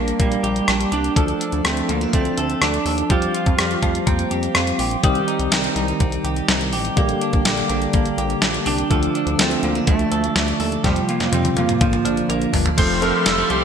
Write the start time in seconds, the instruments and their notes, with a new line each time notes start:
Already playing: analog synth bass A#1, tine electric piano G3 A#3 D4 A#4, clean electric guitar A#3 D4 G4, lead electric guitar A#3
0.08 closed hi-hat
0.19 analog synth bass A#1, lead electric guitar G3, clean electric guitar A#3, kick, closed hi-hat
0.32 closed hi-hat
0.43 analog synth bass A#1, clean electric guitar G4, closed hi-hat
0.56 closed hi-hat
0.68 analog synth bass A#1, lead electric guitar G3, clean electric guitar D4, cross-stick, closed hi-hat
0.81 closed hi-hat
0.92 analog synth bass C2, lead electric guitar D4, clean electric guitar G4, closed hi-hat
1.04 closed hi-hat
1.16 analog synth bass D2, tine electric piano E3 A3 D4 A4, clean electric guitar F3 A4, kick, closed hi-hat
1.22 tine electric piano F3
1.28 closed hi-hat
1.40 clean electric guitar D4, closed hi-hat
1.52 analog synth bass D2, closed hi-hat
1.64 analog synth bass D2, tine electric piano F3 A3 D4 A4, clean electric guitar A3, lead electric guitar C4, cross-stick, closed hi-hat
1.77 closed hi-hat
1.89 analog synth bass D2, lead electric guitar A#3, clean electric guitar C4, closed hi-hat
2.01 clean electric guitar D4, closed hi-hat
2.13 analog synth bass D2, clean electric guitar A3, lead electric guitar C4, kick, closed hi-hat
2.25 closed hi-hat
2.37 analog synth bass D2, clean electric guitar A4, closed hi-hat
2.50 closed hi-hat
2.61 analog synth bass D2, clean electric guitar D4, lead electric guitar D4, cross-stick, closed hi-hat
2.74 closed hi-hat
2.85 analog synth bass D#2, clean electric guitar A4, open hi-hat
2.98 closed hi-hat
3.09 analog synth bass F2, tine electric piano F3 G3 C4 G4, clean electric guitar F3 G4, lead electric guitar F4, kick, closed hi-hat
3.22 closed hi-hat
3.35 clean electric guitar F4, closed hi-hat
3.46 analog synth bass F2, kick, closed hi-hat
3.58 analog synth bass F2, tine electric piano F3 G3 C4 G4, clean electric guitar C4, marimba C4, cross-stick, closed hi-hat
3.71 closed hi-hat
3.82 analog synth bass F2, marimba A3, clean electric guitar F4, kick, closed hi-hat
3.95 closed hi-hat
4.07 analog synth bass F2, marimba A#3, clean electric guitar C4, kick, closed hi-hat
4.19 closed hi-hat
4.31 analog synth bass F2, clean electric guitar G4, closed hi-hat
4.43 closed hi-hat
4.55 analog synth bass F2, marimba C4, clean electric guitar F4, cross-stick, closed hi-hat
4.67 closed hi-hat
4.79 analog synth bass A#1, clean electric guitar G4, open hi-hat
4.91 closed hi-hat
5.03 analog synth bass C2, tine electric piano D#3 G3 C4 G4, clean electric guitar G3 G4, marimba D#4, kick, closed hi-hat
5.15 closed hi-hat
5.27 clean electric guitar D#4, closed hi-hat
5.39 analog synth bass C2, closed hi-hat
5.51 analog synth bass C2, tine electric piano D#3 G3 C4 D#4, clean electric guitar C4, snare, closed hi-hat
5.64 closed hi-hat
5.75 analog synth bass C2, clean electric guitar D#4, closed hi-hat
5.88 closed hi-hat
6.00 analog synth bass C2, clean electric guitar C4, kick, closed hi-hat
6.12 closed hi-hat
6.24 analog synth bass C2, clean electric guitar G4, closed hi-hat
6.36 closed hi-hat
6.48 analog synth bass C2, clean electric guitar D#4, snare, closed hi-hat
6.61 closed hi-hat
6.72 analog synth bass A1, clean electric guitar G4, open hi-hat
6.85 closed hi-hat
6.96 analog synth bass A#1, tine electric piano D3 G3 A#3 G4, clean electric guitar A#3 G4, kick, closed hi-hat
7.09 closed hi-hat
7.21 clean electric guitar D4, closed hi-hat
7.33 analog synth bass A#1, kick, closed hi-hat
7.45 analog synth bass A#1, tine electric piano D3 G3 A#3 G4, clean electric guitar A#3, snare, closed hi-hat
7.57 closed hi-hat
7.69 analog synth bass A#1, clean electric guitar D4, closed hi-hat
7.82 closed hi-hat
7.93 analog synth bass A#1, clean electric guitar A#3, kick, closed hi-hat
8.06 closed hi-hat
8.18 analog synth bass A#1, clean electric guitar G4, closed hi-hat
8.30 closed hi-hat
8.42 analog synth bass A#1, clean electric guitar D4, snare, closed hi-hat
8.54 closed hi-hat
8.66 analog synth bass C2, lead electric guitar D4, clean electric guitar G4, open hi-hat
8.78 closed hi-hat
8.90 analog synth bass D2, tine electric piano D3 F3 A3 F4, clean electric guitar F3 A4, kick, closed hi-hat
9.03 closed hi-hat
9.15 clean electric guitar D4, closed hi-hat
9.27 analog synth bass D2, closed hi-hat
9.38 analog synth bass D2, tine electric piano D3 F3 A3 D4, clean electric guitar A3, lead electric guitar C4, snare, closed hi-hat
9.51 closed hi-hat
9.63 analog synth bass D2, lead electric guitar A#3, clean electric guitar C4, closed hi-hat
9.75 clean electric guitar D4, closed hi-hat
9.87 analog synth bass D2, clean electric guitar A3, lead electric guitar A3, kick, closed hi-hat
9.99 closed hi-hat
10.11 analog synth bass D2, clean electric guitar A4, closed hi-hat
10.24 closed hi-hat
10.35 analog synth bass D2, lead electric guitar A3, clean electric guitar D4, snare, closed hi-hat
10.48 closed hi-hat
10.60 analog synth bass D#2, clean electric guitar A4, open hi-hat
10.72 closed hi-hat
10.84 analog synth bass F2, tine electric piano C3 F3 G3 F4, clean electric guitar F3 G4, lead electric guitar G3, kick, snare, closed hi-hat
10.96 closed hi-hat
11.08 lead electric guitar A#3, clean electric guitar F4, closed hi-hat
11.20 analog synth bass F2, snare, closed hi-hat
11.32 analog synth bass F2, tine electric piano C3 F3 G3 F4, clean electric guitar C4, lead electric guitar C4, closed hi-hat, high tom
11.45 closed hi-hat, high tom
11.57 analog synth bass F2, lead electric guitar A#3, clean electric guitar F4, closed hi-hat, high tom
11.69 closed hi-hat, mid tom
11.80 analog synth bass A#1, tine electric piano D3 F3 A#3 F4, clean electric guitar F3, kick, closed hi-hat, mid tom
11.93 closed hi-hat, mid tom
12.05 analog synth bass A#1, clean electric guitar D4, marimba F4, closed hi-hat
12.17 closed hi-hat
12.29 analog synth bass A#1, clean electric guitar A#3, marimba D4, closed hi-hat
12.42 closed hi-hat
12.53 analog synth bass G1, clean electric guitar D4, floor tom, open hi-hat
12.66 closed hi-hat, floor tom
12.77 analog synth bass F1, tine electric piano F3 A3 C4 A4, clean electric guitar F3, horn section G3 A3 C4 G4, string machine A4 C5 F5 C6, lead electric guitar C5, kick, closed hi-hat, crash
13.01 tine electric piano F3 A3 C4 A4, clean electric guitar F3, lead electric guitar A#4, closed hi-hat
13.26 analog synth bass F1, clean electric guitar G3, lead electric guitar A4, snare, closed hi-hat
13.38 clean electric guitar A3
13.50 analog synth bass C2, clean electric guitar C4, lead electric guitar G4, closed hi-hat